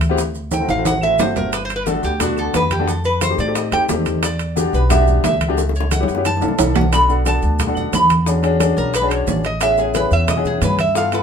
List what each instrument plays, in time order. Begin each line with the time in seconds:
Already playing: upright bass D2
0.01 high bongo, high conga, high timbale, maracas
0.09 grand piano B3 C4 E4 G4
0.18 high bongo, high conga, maracas
0.35 high bongo, high conga, maracas
0.51 resonator guitar played with a steel bar G5, high bongo, high conga, high timbale, maracas
0.60 grand piano A3 C4 E4 F#4
0.68 upright bass A1, resonator guitar played with a steel bar F5, high bongo, high conga, high timbale, maracas
0.76 grand piano A3 C4 E4 F#4
0.85 resonator guitar played with a steel bar F#5, high bongo, high conga, high timbale, maracas
1.01 grand piano A3 C4 E4 F#4, resonator guitar played with a steel bar E5, maracas
1.18 upright bass G1, grand piano A3 C4 E4 F#4, resonator guitar played with a steel bar C5, high bongo, low bongo, low timbale, maracas
1.36 resonator guitar played with a steel bar A#4, high bongo, low conga, low timbale, maracas
1.53 resonator guitar played with a steel bar B4, high bongo, high conga, high timbale, maracas
1.65 resonator guitar played with a steel bar C5
1.69 high bongo, high conga, high timbale, maracas
1.76 resonator guitar played with a steel bar B4
1.86 grand piano A3 B3 D4 F#4, resonator guitar played with a steel bar A4, high bongo, high conga, low timbale, maracas
2.03 upright bass D2, resonator guitar played with a steel bar G4, maracas
2.19 grand piano A3 B3 D4 F#4, resonator guitar played with a steel bar F#4, high bongo, high conga, low conga, high timbale, maracas
2.37 resonator guitar played with a steel bar A4, high bongo, high conga, maracas
2.53 upright bass F2, resonator guitar played with a steel bar B4, high bongo, low bongo, high conga, high timbale, low timbale, maracas
2.71 resonator guitar played with a steel bar G4, high bongo, high conga, high timbale, maracas
2.78 grand piano A3 B3 D4 F#4
2.88 resonator guitar played with a steel bar A4, high bongo, high conga, maracas
3.04 resonator guitar played with a steel bar B4, high bongo, high conga, maracas
3.21 resonator guitar played with a steel bar C5, high bongo, high conga, high timbale, low timbale, maracas
3.29 grand piano A3 C4 D#4 G4
3.38 upright bass A2, resonator guitar played with a steel bar D5, high bongo, maracas
3.46 grand piano A3 C4 D#4 G4
3.55 resonator guitar played with a steel bar D#5, high bongo, high conga, high timbale, maracas
3.71 upright bass F2, grand piano A3 C4 D#4 G4, resonator guitar played with a steel bar G5, high conga, high timbale, maracas
3.88 upright bass E2, grand piano A3 C4 D#4 G4, high bongo, low bongo, high conga, low timbale, maracas
4.06 high bongo, high conga, high timbale, maracas
4.23 resonator guitar played with a steel bar D5, high bongo, high conga, high timbale, maracas
4.39 high bongo, high conga, high timbale, maracas
4.56 grand piano B3 D4 F#4 G4, high bongo, high conga, low timbale, maracas
4.73 upright bass B1, resonator guitar played with a steel bar B4, maracas
4.89 grand piano B3 D4 F#4 G4, resonator guitar played with a steel bar E5, high bongo, high conga, low conga, high timbale, maracas
5.07 high bongo, high conga, low conga, maracas
5.24 upright bass C#2, resonator guitar played with a steel bar E5, high bongo, low bongo, high conga, high timbale, low timbale, maracas
5.41 high bongo, high conga, high timbale, maracas
5.48 grand piano B3 D4 F#4 G4
5.58 high bongo, high conga, maracas
5.69 high bongo
5.75 resonator guitar played with a steel bar C#5, high conga, maracas
5.80 high bongo
5.91 resonator guitar played with a steel bar F#5, high bongo, high conga, high timbale, low timbale, maracas
5.99 grand piano B3 C#4 E4 G4
6.03 low bongo
6.08 upright bass F#2, maracas
6.15 grand piano B3 C#4 E4 G4, high bongo
6.25 resonator guitar played with a steel bar A5, low bongo, high conga, high timbale, maracas
6.37 grand piano A#3, low bongo
6.41 upright bass C2, grand piano D4 E4 A4, high conga, high timbale, maracas
6.48 low bongo
6.58 upright bass B1, grand piano A#3 D4 E4 A4, high conga, high timbale, maracas
6.76 resonator guitar played with a steel bar F#5, high conga, low timbale, maracas
6.81 low bongo
6.92 grand piano B3 D4 F#4 A4, resonator guitar played with a steel bar B5, high bongo, high conga, high timbale, maracas
7.08 grand piano B3 D4 F#4 A4, high bongo, high conga, maracas
7.25 grand piano B3 D4 F#4 A4, resonator guitar played with a steel bar A5, high bongo, high conga, high timbale, low timbale, maracas
7.42 upright bass D2, high conga, maracas
7.59 high bongo, high conga, low conga, high timbale, maracas
7.67 grand piano B3 D4 F#4 A4
7.76 resonator guitar played with a steel bar F#5, high bongo, high conga, low conga, maracas
7.93 upright bass E2, resonator guitar played with a steel bar B5, high bongo, low bongo, high conga, high timbale, low timbale, maracas
8.10 high bongo, high conga, high timbale, maracas
8.26 grand piano C#4 D4 F#4 G#4, high bongo, high conga, maracas
8.42 grand piano C#4 D4 F#4 G#4, high bongo, high timbale, maracas
8.59 grand piano C#4 D4 F#4 G#4, high bongo, high conga, high timbale, low timbale, maracas
8.77 upright bass B1, resonator guitar played with a steel bar A#4, maracas
8.94 resonator guitar played with a steel bar B4, high bongo, high conga, high timbale, maracas
9.01 grand piano C#4 D4 F#4 G#4
9.11 resonator guitar played with a steel bar C#5, high bongo, high conga, high timbale, maracas
9.27 upright bass A1, resonator guitar played with a steel bar D5, high bongo, low bongo, high conga, low timbale, maracas
9.44 resonator guitar played with a steel bar D#5, high bongo, high timbale, maracas
9.61 grand piano B3 C#4 E4 G#4, resonator guitar played with a steel bar E5, high bongo, high timbale, maracas
9.78 grand piano B3 C#4 E4 G#4, resonator guitar played with a steel bar G#4, high bongo, high conga, maracas
9.94 grand piano B3 C#4 E4 G#4, resonator guitar played with a steel bar B4, high bongo, high conga, high timbale, low timbale, maracas
10.11 upright bass E2, resonator guitar played with a steel bar E5, maracas
10.28 resonator guitar played with a steel bar D#5, high bongo, high conga, low conga, high timbale, maracas
10.36 grand piano B3 C#4 E4 G#4
10.45 resonator guitar played with a steel bar G#4, high bongo, high conga, low conga, maracas
10.61 upright bass G2, resonator guitar played with a steel bar B4, high bongo, low bongo, high conga, high timbale, low timbale, maracas
10.79 resonator guitar played with a steel bar E5, high bongo, high conga, high timbale, maracas
10.94 grand piano B3 E4 F4 A4, resonator guitar played with a steel bar F5, high bongo, high conga, maracas
11.12 grand piano B3 E4 F4 A4, resonator guitar played with a steel bar B4, high bongo, high conga, high timbale, maracas